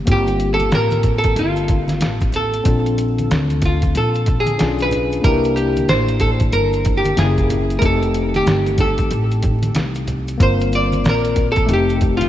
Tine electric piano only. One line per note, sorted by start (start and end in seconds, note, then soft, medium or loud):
0.06 2.61 A#3 medium
0.06 2.61 C4 medium
0.06 2.62 F4 medium
0.06 2.62 G4 medium
2.64 4.54 C4 medium
2.64 4.55 D4 medium
2.64 4.56 F4 medium
2.68 4.57 A4 medium
4.58 5.23 C#4 medium
4.58 5.22 D4 medium
4.58 5.24 F4 medium
4.58 5.24 G#4 medium
5.22 7.12 A#3 medium
5.22 7.13 D4 medium
5.22 7.14 E4 medium
5.26 7.15 G4 medium
7.17 7.81 A#3 medium
7.17 7.82 C#4 medium
7.17 7.82 E4 medium
7.17 7.82 G#4 medium
7.80 10.35 A3 medium
7.80 10.35 C4 medium
7.80 10.36 D#4 medium
7.80 10.37 G4 medium
10.38 11.65 A#3 medium
10.38 11.66 C4 medium
10.38 11.67 F4 medium
10.38 11.67 A#4 medium
11.66 12.29 A3 medium
11.66 12.29 C4 medium
11.66 12.29 D#4 medium
11.71 12.29 G4 medium